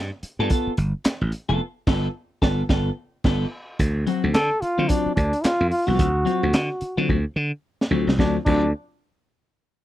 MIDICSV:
0, 0, Header, 1, 6, 480
1, 0, Start_track
1, 0, Tempo, 549451
1, 1394, Time_signature, 4, 2, 24, 8
1, 8603, End_track
2, 0, Start_track
2, 0, Title_t, "Trombone"
2, 0, Program_c, 0, 57
2, 3796, Note_on_c, 0, 69, 109
2, 4030, Note_on_c, 0, 65, 93
2, 4044, Note_off_c, 0, 69, 0
2, 4267, Note_on_c, 0, 62, 91
2, 4280, Note_off_c, 0, 65, 0
2, 4501, Note_off_c, 0, 62, 0
2, 4506, Note_on_c, 0, 62, 91
2, 4747, Note_on_c, 0, 65, 105
2, 4760, Note_off_c, 0, 62, 0
2, 4980, Note_off_c, 0, 65, 0
2, 4985, Note_on_c, 0, 65, 92
2, 5130, Note_on_c, 0, 66, 84
2, 5143, Note_off_c, 0, 65, 0
2, 6092, Note_off_c, 0, 66, 0
2, 7154, Note_on_c, 0, 62, 80
2, 7304, Note_off_c, 0, 62, 0
2, 7384, Note_on_c, 0, 62, 90
2, 7610, Note_off_c, 0, 62, 0
2, 8603, End_track
3, 0, Start_track
3, 0, Title_t, "Clean electric guitar"
3, 0, Program_c, 1, 27
3, 349, Note_on_c, 1, 69, 101
3, 351, Note_on_c, 1, 65, 93
3, 360, Note_on_c, 1, 59, 73
3, 430, Note_off_c, 1, 59, 0
3, 433, Note_off_c, 1, 65, 0
3, 437, Note_off_c, 1, 69, 0
3, 440, Note_on_c, 1, 59, 87
3, 444, Note_on_c, 1, 65, 91
3, 448, Note_on_c, 1, 69, 111
3, 621, Note_off_c, 1, 59, 0
3, 623, Note_off_c, 1, 65, 0
3, 625, Note_off_c, 1, 69, 0
3, 1301, Note_on_c, 1, 65, 89
3, 1301, Note_on_c, 1, 69, 94
3, 1308, Note_on_c, 1, 59, 76
3, 1396, Note_off_c, 1, 65, 0
3, 1396, Note_off_c, 1, 69, 0
3, 1399, Note_off_c, 1, 59, 0
3, 1635, Note_on_c, 1, 59, 103
3, 1642, Note_on_c, 1, 65, 104
3, 1646, Note_on_c, 1, 69, 92
3, 1806, Note_off_c, 1, 59, 0
3, 1810, Note_off_c, 1, 65, 0
3, 1812, Note_off_c, 1, 69, 0
3, 2115, Note_on_c, 1, 69, 101
3, 2123, Note_on_c, 1, 65, 98
3, 2126, Note_on_c, 1, 59, 109
3, 2286, Note_off_c, 1, 69, 0
3, 2291, Note_off_c, 1, 65, 0
3, 2292, Note_off_c, 1, 59, 0
3, 2350, Note_on_c, 1, 59, 93
3, 2352, Note_on_c, 1, 65, 93
3, 2359, Note_on_c, 1, 69, 101
3, 2523, Note_off_c, 1, 59, 0
3, 2524, Note_off_c, 1, 65, 0
3, 2528, Note_off_c, 1, 69, 0
3, 2839, Note_on_c, 1, 59, 101
3, 2846, Note_on_c, 1, 65, 100
3, 2852, Note_on_c, 1, 69, 108
3, 3008, Note_off_c, 1, 59, 0
3, 3012, Note_off_c, 1, 65, 0
3, 3016, Note_off_c, 1, 69, 0
3, 3552, Note_on_c, 1, 54, 85
3, 3557, Note_on_c, 1, 60, 84
3, 3563, Note_on_c, 1, 66, 80
3, 3737, Note_off_c, 1, 54, 0
3, 3740, Note_off_c, 1, 60, 0
3, 3742, Note_off_c, 1, 66, 0
3, 4174, Note_on_c, 1, 65, 75
3, 4179, Note_on_c, 1, 60, 89
3, 4185, Note_on_c, 1, 54, 70
3, 4263, Note_off_c, 1, 54, 0
3, 4269, Note_off_c, 1, 60, 0
3, 4272, Note_off_c, 1, 65, 0
3, 4274, Note_on_c, 1, 54, 80
3, 4280, Note_on_c, 1, 60, 87
3, 4282, Note_on_c, 1, 65, 94
3, 4457, Note_off_c, 1, 54, 0
3, 4460, Note_off_c, 1, 60, 0
3, 4462, Note_off_c, 1, 65, 0
3, 5128, Note_on_c, 1, 65, 88
3, 5136, Note_on_c, 1, 60, 79
3, 5140, Note_on_c, 1, 54, 73
3, 5293, Note_off_c, 1, 65, 0
3, 5297, Note_off_c, 1, 60, 0
3, 5299, Note_off_c, 1, 54, 0
3, 5462, Note_on_c, 1, 54, 84
3, 5468, Note_on_c, 1, 60, 101
3, 5468, Note_on_c, 1, 65, 106
3, 5651, Note_off_c, 1, 54, 0
3, 5654, Note_off_c, 1, 60, 0
3, 5654, Note_off_c, 1, 65, 0
3, 6092, Note_on_c, 1, 65, 94
3, 6098, Note_on_c, 1, 60, 83
3, 6105, Note_on_c, 1, 54, 70
3, 6250, Note_off_c, 1, 65, 0
3, 6253, Note_off_c, 1, 60, 0
3, 6257, Note_off_c, 1, 54, 0
3, 6911, Note_on_c, 1, 54, 84
3, 6918, Note_on_c, 1, 60, 83
3, 6923, Note_on_c, 1, 65, 95
3, 7095, Note_off_c, 1, 54, 0
3, 7099, Note_off_c, 1, 60, 0
3, 7101, Note_off_c, 1, 65, 0
3, 7143, Note_on_c, 1, 54, 79
3, 7154, Note_on_c, 1, 60, 76
3, 7158, Note_on_c, 1, 65, 84
3, 7310, Note_off_c, 1, 54, 0
3, 7316, Note_off_c, 1, 60, 0
3, 7318, Note_off_c, 1, 65, 0
3, 7393, Note_on_c, 1, 54, 73
3, 7401, Note_on_c, 1, 60, 89
3, 7407, Note_on_c, 1, 65, 93
3, 7555, Note_off_c, 1, 54, 0
3, 7559, Note_off_c, 1, 60, 0
3, 7562, Note_off_c, 1, 65, 0
3, 8603, End_track
4, 0, Start_track
4, 0, Title_t, "Slap bass"
4, 0, Program_c, 2, 36
4, 343, Note_on_c, 2, 43, 97
4, 426, Note_off_c, 2, 43, 0
4, 678, Note_on_c, 2, 31, 87
4, 805, Note_off_c, 2, 31, 0
4, 1060, Note_on_c, 2, 33, 99
4, 1145, Note_off_c, 2, 33, 0
4, 1300, Note_on_c, 2, 29, 80
4, 1385, Note_off_c, 2, 29, 0
4, 1637, Note_on_c, 2, 31, 109
4, 1807, Note_off_c, 2, 31, 0
4, 2117, Note_on_c, 2, 31, 107
4, 2287, Note_off_c, 2, 31, 0
4, 2355, Note_on_c, 2, 31, 89
4, 2526, Note_off_c, 2, 31, 0
4, 2834, Note_on_c, 2, 31, 90
4, 3005, Note_off_c, 2, 31, 0
4, 3315, Note_on_c, 2, 38, 114
4, 3528, Note_off_c, 2, 38, 0
4, 3702, Note_on_c, 2, 38, 89
4, 3785, Note_off_c, 2, 38, 0
4, 3794, Note_on_c, 2, 50, 120
4, 3922, Note_off_c, 2, 50, 0
4, 4181, Note_on_c, 2, 50, 86
4, 4265, Note_off_c, 2, 50, 0
4, 4517, Note_on_c, 2, 38, 103
4, 4643, Note_off_c, 2, 38, 0
4, 4897, Note_on_c, 2, 41, 96
4, 4982, Note_off_c, 2, 41, 0
4, 5134, Note_on_c, 2, 36, 88
4, 5236, Note_off_c, 2, 36, 0
4, 5236, Note_on_c, 2, 38, 105
4, 5448, Note_off_c, 2, 38, 0
4, 5619, Note_on_c, 2, 38, 95
4, 5703, Note_off_c, 2, 38, 0
4, 5709, Note_on_c, 2, 50, 110
4, 5839, Note_off_c, 2, 50, 0
4, 6095, Note_on_c, 2, 50, 98
4, 6181, Note_off_c, 2, 50, 0
4, 6197, Note_on_c, 2, 38, 88
4, 6323, Note_off_c, 2, 38, 0
4, 6429, Note_on_c, 2, 50, 95
4, 6558, Note_off_c, 2, 50, 0
4, 6907, Note_on_c, 2, 38, 85
4, 7037, Note_off_c, 2, 38, 0
4, 7051, Note_on_c, 2, 36, 82
4, 7138, Note_off_c, 2, 36, 0
4, 7154, Note_on_c, 2, 38, 96
4, 7304, Note_off_c, 2, 38, 0
4, 7395, Note_on_c, 2, 38, 92
4, 7616, Note_off_c, 2, 38, 0
4, 8603, End_track
5, 0, Start_track
5, 0, Title_t, "Muted slap bass strokes"
5, 200, Note_on_c, 9, 29, 48
5, 288, Note_off_c, 9, 29, 0
5, 586, Note_on_c, 9, 29, 53
5, 674, Note_off_c, 9, 29, 0
5, 918, Note_on_c, 9, 29, 44
5, 1005, Note_off_c, 9, 29, 0
5, 4036, Note_on_c, 9, 29, 46
5, 4124, Note_off_c, 9, 29, 0
5, 4420, Note_on_c, 9, 29, 44
5, 4507, Note_off_c, 9, 29, 0
5, 4756, Note_on_c, 9, 29, 42
5, 4843, Note_off_c, 9, 29, 0
5, 5955, Note_on_c, 9, 29, 50
5, 6042, Note_off_c, 9, 29, 0
5, 8603, End_track
6, 0, Start_track
6, 0, Title_t, "Drums"
6, 200, Note_on_c, 9, 42, 67
6, 287, Note_off_c, 9, 42, 0
6, 435, Note_on_c, 9, 42, 98
6, 441, Note_on_c, 9, 36, 99
6, 522, Note_off_c, 9, 42, 0
6, 529, Note_off_c, 9, 36, 0
6, 675, Note_on_c, 9, 42, 61
6, 762, Note_off_c, 9, 42, 0
6, 912, Note_on_c, 9, 42, 107
6, 923, Note_on_c, 9, 38, 101
6, 923, Note_on_c, 9, 39, 88
6, 999, Note_off_c, 9, 42, 0
6, 1010, Note_off_c, 9, 38, 0
6, 1010, Note_off_c, 9, 39, 0
6, 1154, Note_on_c, 9, 42, 77
6, 1241, Note_off_c, 9, 42, 0
6, 1632, Note_on_c, 9, 49, 84
6, 1635, Note_on_c, 9, 36, 121
6, 1640, Note_on_c, 9, 38, 101
6, 1720, Note_off_c, 9, 49, 0
6, 1722, Note_off_c, 9, 36, 0
6, 1728, Note_off_c, 9, 38, 0
6, 2114, Note_on_c, 9, 36, 93
6, 2120, Note_on_c, 9, 38, 106
6, 2201, Note_off_c, 9, 36, 0
6, 2207, Note_off_c, 9, 38, 0
6, 2353, Note_on_c, 9, 36, 110
6, 2356, Note_on_c, 9, 38, 105
6, 2440, Note_off_c, 9, 36, 0
6, 2443, Note_off_c, 9, 38, 0
6, 2831, Note_on_c, 9, 49, 82
6, 2834, Note_on_c, 9, 36, 111
6, 2839, Note_on_c, 9, 38, 106
6, 2918, Note_off_c, 9, 49, 0
6, 2921, Note_off_c, 9, 36, 0
6, 2926, Note_off_c, 9, 38, 0
6, 3313, Note_on_c, 9, 42, 94
6, 3315, Note_on_c, 9, 36, 107
6, 3401, Note_off_c, 9, 42, 0
6, 3402, Note_off_c, 9, 36, 0
6, 3556, Note_on_c, 9, 42, 62
6, 3643, Note_off_c, 9, 42, 0
6, 3791, Note_on_c, 9, 42, 79
6, 3801, Note_on_c, 9, 38, 120
6, 3801, Note_on_c, 9, 39, 86
6, 3878, Note_off_c, 9, 42, 0
6, 3888, Note_off_c, 9, 38, 0
6, 3888, Note_off_c, 9, 39, 0
6, 4037, Note_on_c, 9, 42, 64
6, 4125, Note_off_c, 9, 42, 0
6, 4271, Note_on_c, 9, 42, 104
6, 4278, Note_on_c, 9, 36, 100
6, 4358, Note_off_c, 9, 42, 0
6, 4365, Note_off_c, 9, 36, 0
6, 4514, Note_on_c, 9, 42, 57
6, 4516, Note_on_c, 9, 36, 78
6, 4602, Note_off_c, 9, 42, 0
6, 4603, Note_off_c, 9, 36, 0
6, 4656, Note_on_c, 9, 42, 55
6, 4743, Note_off_c, 9, 42, 0
6, 4751, Note_on_c, 9, 42, 93
6, 4762, Note_on_c, 9, 38, 105
6, 4762, Note_on_c, 9, 39, 90
6, 4838, Note_off_c, 9, 42, 0
6, 4849, Note_off_c, 9, 38, 0
6, 4849, Note_off_c, 9, 39, 0
6, 4991, Note_on_c, 9, 46, 66
6, 5078, Note_off_c, 9, 46, 0
6, 5233, Note_on_c, 9, 42, 92
6, 5234, Note_on_c, 9, 36, 121
6, 5320, Note_off_c, 9, 42, 0
6, 5322, Note_off_c, 9, 36, 0
6, 5476, Note_on_c, 9, 42, 60
6, 5563, Note_off_c, 9, 42, 0
6, 5707, Note_on_c, 9, 42, 89
6, 5717, Note_on_c, 9, 38, 116
6, 5717, Note_on_c, 9, 39, 96
6, 5794, Note_off_c, 9, 42, 0
6, 5804, Note_off_c, 9, 38, 0
6, 5804, Note_off_c, 9, 39, 0
6, 5947, Note_on_c, 9, 42, 67
6, 6034, Note_off_c, 9, 42, 0
6, 6195, Note_on_c, 9, 36, 82
6, 6282, Note_off_c, 9, 36, 0
6, 6825, Note_on_c, 9, 38, 81
6, 6913, Note_off_c, 9, 38, 0
6, 7066, Note_on_c, 9, 38, 95
6, 7152, Note_on_c, 9, 36, 110
6, 7154, Note_off_c, 9, 38, 0
6, 7161, Note_on_c, 9, 38, 89
6, 7240, Note_off_c, 9, 36, 0
6, 7249, Note_off_c, 9, 38, 0
6, 7392, Note_on_c, 9, 36, 100
6, 7393, Note_on_c, 9, 49, 89
6, 7480, Note_off_c, 9, 36, 0
6, 7480, Note_off_c, 9, 49, 0
6, 8603, End_track
0, 0, End_of_file